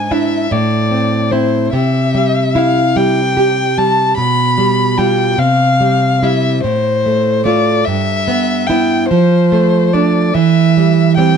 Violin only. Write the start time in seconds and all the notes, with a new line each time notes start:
Already playing: G#5
0.12 E5
0.52 D5
1.32 C5
1.73 E5
2.56 F5
2.96 G5
3.78 A5
4.17 B5
4.98 G5
5.39 F5
6.23 E5
6.64 C5
7.46 D5
7.85 E5
8.67 G5
9.10 C5
9.93 D5
10.34 E5
11.17 G5